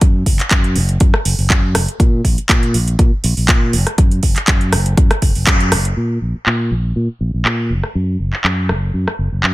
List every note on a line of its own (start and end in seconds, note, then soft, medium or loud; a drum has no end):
0.01 0.22 F#2 medium
0.01 kick loud
0.01 closed hi-hat medium
0.26 0.37 F#1 medium
0.26 kick medium
0.26 open hi-hat loud
0.39 muted fingered electric bass stroke soft
0.39 clap soft
0.39 closed hi-hat soft
0.51 0.77 F#2 medium
0.51 kick loud
0.51 clap loud
0.51 closed hi-hat medium
0.64 closed hi-hat soft
0.76 0.96 F#1 loud
0.76 open hi-hat medium
0.89 closed hi-hat soft
1.00 1.11 F#2 loud
1.00 kick loud
1.00 closed hi-hat medium
1.14 muted fingered electric bass stroke soft
1.14 cross-stick medium
1.25 1.36 F#1 medium
1.25 open hi-hat loud
1.38 1.48 F#1 medium
1.38 open hi-hat medium
1.50 1.76 F#2 medium
1.50 kick loud
1.50 clap loud
1.50 closed hi-hat medium
1.75 1.86 F#1 medium
1.75 cross-stick medium
1.75 open hi-hat loud
1.88 closed hi-hat soft
2.00 2.20 A#2 loud
2.00 kick loud
2.00 closed hi-hat medium
2.25 2.35 A#1 medium
2.25 kick medium
2.25 open hi-hat loud
2.38 muted fingered electric bass stroke soft
2.38 closed hi-hat medium
2.49 2.76 A#2 loud
2.49 kick loud
2.49 clap loud
2.49 closed hi-hat medium
2.63 closed hi-hat soft
2.74 2.95 A#1 medium
2.74 open hi-hat loud
2.88 closed hi-hat medium
2.99 3.10 A#2 loud
2.99 kick loud
2.99 closed hi-hat medium
3.24 3.35 A#1 loud
3.24 open hi-hat medium
3.37 3.47 A#1 medium
3.37 open hi-hat medium
3.49 3.75 A#2 medium
3.49 kick loud
3.49 clap loud
3.49 closed hi-hat medium
3.73 3.84 F#1 medium
3.73 open hi-hat loud
3.87 cross-stick medium
3.87 closed hi-hat medium
3.98 4.19 F#2 medium
3.98 kick loud
3.98 closed hi-hat medium
4.11 closed hi-hat soft
4.23 4.34 F#1 medium
4.23 kick medium
4.23 open hi-hat loud
4.36 muted fingered electric bass stroke soft
4.36 clap soft
4.36 closed hi-hat medium
4.48 4.74 F#2 medium
4.48 kick loud
4.48 clap loud
4.48 closed hi-hat medium
4.61 closed hi-hat soft
4.72 4.93 F#1 loud
4.72 cross-stick medium
4.72 open hi-hat loud
4.86 closed hi-hat medium
4.97 5.08 F#2 loud
4.97 kick loud
4.97 closed hi-hat medium
5.11 muted fingered electric bass stroke soft
5.11 cross-stick medium
5.11 closed hi-hat soft
5.22 5.33 F#1 loud
5.22 kick medium
5.22 open hi-hat medium
5.35 5.45 F#1 medium
5.35 open hi-hat medium
5.47 5.74 F#2 loud
5.47 kick loud
5.47 clap loud
5.47 closed hi-hat medium
5.60 closed hi-hat soft
5.72 5.92 F#1 loud
5.72 cross-stick medium
5.72 open hi-hat loud
5.85 closed hi-hat medium
5.97 6.17 A#2 medium
6.22 6.32 A#1 medium
6.35 muted fingered electric bass stroke soft
6.46 6.73 A#2 medium
6.46 clap loud
6.71 6.91 A#1 medium
6.96 7.07 A#2 medium
7.21 7.31 A#1 medium
7.34 7.43 A#1 medium
7.45 7.71 A#2 medium
7.45 clap loud
7.70 7.81 F#1 medium
7.83 cross-stick medium
7.95 8.15 F#2 medium
8.20 8.30 F#1 medium
8.33 muted fingered electric bass stroke soft
8.33 clap soft
8.44 8.70 F#2 medium
8.44 clap loud
8.69 8.89 F#1 medium
8.69 cross-stick medium
8.94 9.05 F#2 medium
9.07 muted fingered electric bass stroke soft
9.07 cross-stick medium
9.19 9.30 F#1 medium
9.32 9.41 F#1 medium
9.44 9.54 F#2 medium
9.44 clap loud